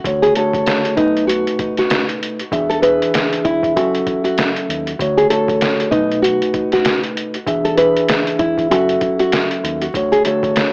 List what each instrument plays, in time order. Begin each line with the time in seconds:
0.04 fingered electric bass D2, tine electric piano D3 A3 F#4 C#5, kick, closed hi-hat
0.22 nylon-string guitar G#4, closed hi-hat
0.35 tine electric piano D3 A3 F#4 C#5, nylon-string guitar A4, closed hi-hat
0.53 kick, closed hi-hat
0.66 snare, closed hi-hat
0.85 closed hi-hat
0.96 fingered electric bass B1, tine electric piano B2 A3 D#4 B4, nylon-string guitar D#4, kick, closed hi-hat
1.17 closed hi-hat
1.27 nylon-string guitar F#4, closed hi-hat
1.47 closed hi-hat
1.59 kick, closed hi-hat
1.77 nylon-string guitar F#4, snare, closed hi-hat
1.90 snare, closed hi-hat
2.09 closed hi-hat
2.23 closed hi-hat
2.39 closed hi-hat
2.51 fingered electric bass E1, tine electric piano E3 D4 G#4 E5, kick, closed hi-hat
2.69 nylon-string guitar A4, closed hi-hat
2.82 tine electric piano E3 D4 G#4 E5, nylon-string guitar B4, closed hi-hat
3.02 closed hi-hat
3.14 snare, closed hi-hat
3.33 closed hi-hat
3.45 fingered electric bass E1, nylon-string guitar E4, kick, closed hi-hat
3.63 kick, closed hi-hat
3.76 fingered electric bass F#1, tine electric piano F#3 C#4 A4 E5, nylon-string guitar F#4, closed hi-hat
3.95 closed hi-hat
4.07 kick, closed hi-hat
4.24 nylon-string guitar F#4, closed hi-hat
4.38 snare, closed hi-hat
4.56 closed hi-hat
4.69 fingered electric bass D#2, closed hi-hat
4.87 closed hi-hat
4.99 fingered electric bass D2, tine electric piano D3 A3 F#4 C#5, kick, closed hi-hat
5.17 nylon-string guitar G#4, closed hi-hat
5.30 tine electric piano D3 A3 F#4 C#5, nylon-string guitar A4, closed hi-hat
5.48 kick, closed hi-hat
5.61 snare, closed hi-hat
5.80 closed hi-hat
5.90 fingered electric bass B1, tine electric piano B2 A3 D#4 B4, nylon-string guitar D#4, kick, closed hi-hat
6.11 closed hi-hat
6.22 nylon-string guitar F#4, closed hi-hat
6.42 closed hi-hat
6.54 kick, closed hi-hat
6.72 nylon-string guitar F#4, snare, closed hi-hat
6.85 snare, closed hi-hat
7.04 closed hi-hat
7.17 closed hi-hat
7.34 closed hi-hat
7.46 fingered electric bass E1, tine electric piano E3 D4 G#4 E5, kick, closed hi-hat
7.65 nylon-string guitar A4, closed hi-hat
7.77 tine electric piano E3 D4 G#4 E5, nylon-string guitar B4, closed hi-hat
7.97 closed hi-hat
8.08 snare, closed hi-hat
8.27 closed hi-hat
8.39 fingered electric bass E1, nylon-string guitar E4, kick, closed hi-hat
8.58 kick, closed hi-hat
8.70 fingered electric bass F#1, tine electric piano F#3 C#4 A4 E5, nylon-string guitar F#4, closed hi-hat
8.89 closed hi-hat
9.01 kick, closed hi-hat
9.19 nylon-string guitar F#4, closed hi-hat
9.32 snare, closed hi-hat
9.51 closed hi-hat
9.64 fingered electric bass D#2, closed hi-hat
9.81 closed hi-hat
9.94 fingered electric bass D2, tine electric piano D3 A3 F#4 C#5, kick, closed hi-hat
10.12 nylon-string guitar G#4, closed hi-hat
10.25 tine electric piano D3 A3 F#4 C#5, nylon-string guitar A4, closed hi-hat
10.43 kick, closed hi-hat
10.56 snare, closed hi-hat